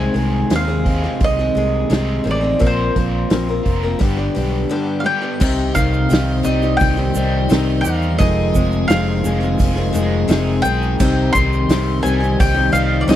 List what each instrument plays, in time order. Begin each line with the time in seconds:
Already playing: steel-string acoustic guitar C3 D#3 G#3 C4 G#4, mandolin G#5
0.14 fingered electric bass C2, steel-string acoustic guitar D#3 G#3 C4 G#4, open hi-hat
0.50 fingered electric bass D#2, steel-string acoustic guitar C3 D#3 G#3 C4 G#4, snare, open hi-hat
0.55 mandolin F5
0.68 steel-string acoustic guitar G#3 C4 G#4
0.85 overdriven electric guitar C3 D#3 G#3 C4 G#4, kick, open hi-hat
1.04 steel-string acoustic guitar G#3 C4 G#4
1.20 fingered electric bass C2, kick, open hi-hat
1.24 mandolin D#5
1.39 steel-string acoustic guitar G#3 C4 G#4
1.55 fingered electric bass C2, steel-string acoustic guitar D#3 G#3 C4 G#4, open hi-hat
1.90 fingered electric bass C2, steel-string acoustic guitar C3 D#3 G#3 C4 G#4, snare, open hi-hat
2.24 fingered electric bass A1, steel-string acoustic guitar D#3 G#3 C4 G#4, open hi-hat
2.31 mandolin D5
2.41 steel-string acoustic guitar G#3 C4 G#4
2.59 fingered electric bass A#1, steel-string acoustic guitar A#2 F3 A#3 C4 A#4, overdriven electric guitar F4, kick, open hi-hat
2.67 mandolin C5
2.96 fingered electric bass A#1, steel-string acoustic guitar F3 A#3 C4 A#4, kick, open hi-hat
3.30 fingered electric bass A#1, steel-string acoustic guitar A#2 F3 A#3 C4 A#4, snare, open hi-hat
3.49 steel-string acoustic guitar A#3 C4 A#4
3.63 fingered electric bass F1, overdriven electric guitar A#2 F3 A#3 C4 F4, kick, open hi-hat
3.83 steel-string acoustic guitar A#3 C4 A#4
3.99 fingered electric bass G1, steel-string acoustic guitar G2 D3 G3 B3 D4 G4, kick, open hi-hat
4.17 steel-string acoustic guitar G3 B3 D4 G4
4.35 fingered electric bass B1, steel-string acoustic guitar G3 B3 D4 G4, open hi-hat
4.69 steel-string acoustic guitar G2 D3 G3 B3 D4 G4
5.00 steel-string acoustic guitar G3, mandolin F5
5.06 overdriven electric guitar G2 D3, steel-string acoustic guitar B3 D4 G4, mandolin G5
5.22 steel-string acoustic guitar G3 B3 D4 G4
5.40 fingered electric bass C2, steel-string acoustic guitar C3 D#3 C4 D#4 G4, tonewheel organ G4 C5 D#5, kick, crash, shaker
5.75 fingered electric bass C2, steel-string acoustic guitar D#3 C4 D#4 G4, mandolin F5, kick, shaker
5.93 shaker
6.10 fingered electric bass C2, steel-string acoustic guitar C3 D#3 C4 D#4 G4, snare, open hi-hat, shaker
6.43 fingered electric bass C2, steel-string acoustic guitar D#3 C4 D#4 G4, overdriven electric guitar G3, mandolin D#5, shaker
6.62 steel-string acoustic guitar C4 D#4 G4, shaker
6.77 overdriven electric guitar D#3, mandolin G5, shaker
6.81 fingered electric bass C2, kick, open hi-hat
6.97 steel-string acoustic guitar C4 D#4 G4
7.15 fingered electric bass C2, steel-string acoustic guitar D#3 C4 D#4 G4, overdriven electric guitar G3, shaker
7.49 fingered electric bass C2, steel-string acoustic guitar C3 D#3 C4 D#4 G4, snare, open hi-hat, shaker
7.81 mandolin F5, shaker
7.85 fingered electric bass E2, steel-string acoustic guitar D#3 C4 D#4 G4
8.02 shaker
8.18 fingered electric bass F1, steel-string acoustic guitar F2 C3 D#3 G#3 C4 G#4, tonewheel organ F4 G#4 D#5, mandolin D#5, kick, open hi-hat, shaker
8.54 fingered electric bass F1, overdriven electric guitar C3, steel-string acoustic guitar D#3 G#3 C4 G#4, kick, shaker
8.72 shaker
8.88 fingered electric bass F1, steel-string acoustic guitar F2 C3 D#3 G#3 C4 G#4, mandolin F5, snare, open hi-hat, shaker
9.24 fingered electric bass F1, steel-string acoustic guitar D#3 G#3 C4 G#4, shaker
9.40 steel-string acoustic guitar D#3 G#3 C4 G#4, shaker
9.59 fingered electric bass F1, overdriven electric guitar D#3, kick, open hi-hat, shaker
9.76 steel-string acoustic guitar D#3 G#3 C4 G#4
9.93 fingered electric bass F1, steel-string acoustic guitar D#3 G#3 C4 G#4, shaker
10.28 fingered electric bass F1, steel-string acoustic guitar F2 C3 D#3 G#3 C4 G#4, overdriven electric guitar D#4, snare, open hi-hat, shaker
10.62 fingered electric bass B1, steel-string acoustic guitar D#3 G#3 C4 G#4, mandolin G5, shaker
10.82 shaker
11.00 fingered electric bass C2, steel-string acoustic guitar C3 D#3 C4 D#4 G4, tonewheel organ G3 C5 D#5, kick, crash, shaker
11.33 fingered electric bass C2, steel-string acoustic guitar D#3 C4 D#4 G4, mandolin C6, kick, shaker
11.53 shaker
11.69 fingered electric bass C2, steel-string acoustic guitar C3 D#3 C4 D#4 G4, snare, open hi-hat, shaker
12.03 fingered electric bass C2, steel-string acoustic guitar D#3 C4 D#4 G4, overdriven electric guitar G3, mandolin G#5, shaker
12.20 steel-string acoustic guitar C4 D#4 G4, shaker
12.40 fingered electric bass C2, overdriven electric guitar D#3, mandolin G5, kick, open hi-hat, shaker
12.54 steel-string acoustic guitar C4 D#4 G4
12.72 fingered electric bass C2, steel-string acoustic guitar D#3 C4 D#4 G4, overdriven electric guitar G3, mandolin F5, shaker
13.01 mandolin D5
13.07 fingered electric bass C2, steel-string acoustic guitar C3 D#3 C4 D#4 G4, mandolin D#5, snare, open hi-hat, shaker